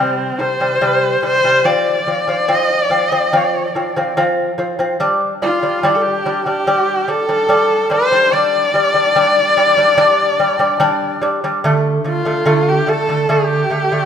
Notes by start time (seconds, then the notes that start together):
Already playing: C3 G3 C4
0.40 C3 G3 C5
0.60 C3 G3
0.81 C3 G3
1.23 C3 G3 C5
1.44 C3 G3
1.64 F3 C4 D5
2.07 F3 C4
2.28 F3 C4
2.48 F3 C4
2.54 D#5
2.78 D5
2.90 F3 C4
3.04 D#5
3.12 F3 C4
3.28 D5
3.33 F3 C4
3.75 F3 C4
3.96 F3 C4
4.17 F3 C4
4.58 F3 C4
4.79 F3 C4
5.00 G3 D4
5.42 G3 D4 F4
5.63 G3 D4
5.83 G3 D4
5.95 A4
6.02 G4
6.26 G3 D4
6.45 G3 D4 G4
6.67 G3 D4
7.08 G3 D4 A4
7.29 G3 D4
7.49 G3 D4
7.90 G3 D4 C5
8.12 G3 D4
8.33 G3 D4 D5
8.74 G3 D4
8.94 G3 D4
9.16 G3 D4
9.57 G3 D4
9.77 G3 D4
9.97 G3 D4
10.40 G3 D4
10.59 G3 D4
10.80 G3 D4
11.22 G3 D4
11.44 G3 D4
11.64 D3 A3
12.04 D3 A3
12.09 F4
12.25 D3 A3
12.45 D3 A3
12.69 G4
12.87 D3 A3 A4
13.09 D3 A3
13.29 D3 A3 G4
13.70 D3 A3
13.92 D3 A3